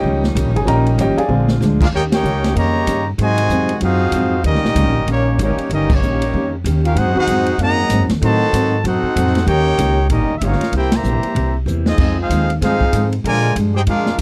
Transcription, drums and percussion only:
0.04 kick
0.24 snare
0.36 kick, hi-hat pedal, ride
0.56 ride
0.67 kick, ride
0.86 ride
0.98 kick, hi-hat pedal, ride
1.18 ride
1.48 snare
1.62 snare, hi-hat pedal
1.81 kick, crash
1.93 kick
2.12 snare, ride
2.25 hi-hat pedal
2.44 snare, ride
2.56 kick, ride
2.87 kick, hi-hat pedal, ride
3.19 kick, ride
3.38 ride
3.49 kick, hi-hat pedal
3.69 ride
3.81 kick, ride
4.12 kick, hi-hat pedal, ride
4.44 kick, ride
4.55 snare
4.65 snare
4.75 kick, hi-hat pedal, ride
5.07 kick, ride
5.39 kick, hi-hat pedal, ride
5.58 ride
5.70 kick, ride
5.90 kick, crash
6.02 hi-hat pedal
6.22 ride
6.34 kick
6.65 kick, hi-hat pedal, ride
6.85 ride
6.96 kick, ride
7.27 kick, hi-hat pedal, ride
7.46 ride
7.59 kick, ride
7.90 kick, hi-hat pedal, ride
8.09 snare, ride
8.22 kick, ride
8.53 kick, hi-hat pedal, ride
8.84 kick, ride
9.16 kick, hi-hat pedal, ride
9.27 snare
9.35 snare, ride
9.47 kick, ride
9.78 kick, hi-hat pedal, ride
10.10 kick, ride
10.41 kick, hi-hat pedal, ride
10.53 snare
10.61 snare, ride
10.73 kick, ride
10.92 snare, ride
11.04 hi-hat pedal
11.23 ride
11.36 kick, ride
11.67 hi-hat pedal
11.86 snare
11.98 kick, crash
12.30 kick, hi-hat pedal, ride
12.50 ride
12.62 kick, snare, ride
12.81 kick
12.93 kick, hi-hat pedal, ride
13.13 ride
13.25 kick, ride
13.56 kick, hi-hat pedal, ride
13.87 kick, ride
14.06 snare
14.18 kick, hi-hat pedal, ride

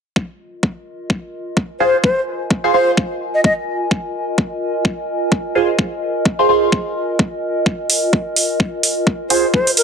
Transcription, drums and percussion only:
0.16 kick
0.63 kick
1.10 kick
1.57 kick
2.04 kick
2.51 kick
2.97 kick
3.44 kick
3.91 kick
4.38 kick
4.85 kick
5.32 kick
5.79 kick
6.25 kick
6.72 kick
7.19 kick
7.66 kick
7.90 open hi-hat
8.13 kick
8.36 open hi-hat
8.60 kick
8.83 open hi-hat
9.07 kick
9.30 open hi-hat
9.54 kick
9.67 open hi-hat
9.77 open hi-hat

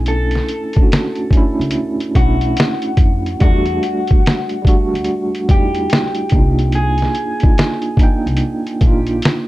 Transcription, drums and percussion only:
0.06 closed hi-hat
0.31 closed hi-hat
0.35 snare
0.48 closed hi-hat
0.73 kick, closed hi-hat
0.92 snare, closed hi-hat
1.15 closed hi-hat
1.31 kick, closed hi-hat
1.61 closed hi-hat
1.71 closed hi-hat
2.00 closed hi-hat
2.15 kick, closed hi-hat
2.41 closed hi-hat
2.57 snare, closed hi-hat
2.82 closed hi-hat
2.97 kick, closed hi-hat
3.26 closed hi-hat
3.40 kick, closed hi-hat
3.66 closed hi-hat
3.83 closed hi-hat
4.07 kick, closed hi-hat
4.26 snare, closed hi-hat
4.49 closed hi-hat
4.65 kick, closed hi-hat
4.95 closed hi-hat
5.04 closed hi-hat
5.35 closed hi-hat
5.49 kick, closed hi-hat
5.75 closed hi-hat
5.90 snare, closed hi-hat
6.15 closed hi-hat
6.29 kick, closed hi-hat
6.59 closed hi-hat
6.72 closed hi-hat
6.98 closed hi-hat
7.02 snare
7.15 closed hi-hat
7.40 kick, closed hi-hat
7.58 snare, closed hi-hat
7.82 closed hi-hat
7.97 kick, closed hi-hat
8.27 closed hi-hat
8.37 closed hi-hat
8.67 closed hi-hat
8.81 kick, closed hi-hat
9.07 closed hi-hat
9.22 snare, closed hi-hat

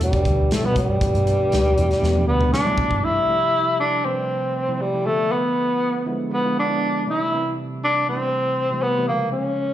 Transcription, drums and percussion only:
0.01 closed hi-hat
0.13 kick, closed hi-hat
0.25 kick, closed hi-hat
0.51 snare, closed hi-hat
0.76 kick, closed hi-hat
1.01 kick, closed hi-hat
1.15 closed hi-hat
1.27 closed hi-hat
1.52 snare, closed hi-hat
1.78 closed hi-hat
1.91 snare, closed hi-hat
2.04 snare
2.15 high tom
2.41 mid tom
2.54 snare
2.78 kick
2.91 kick

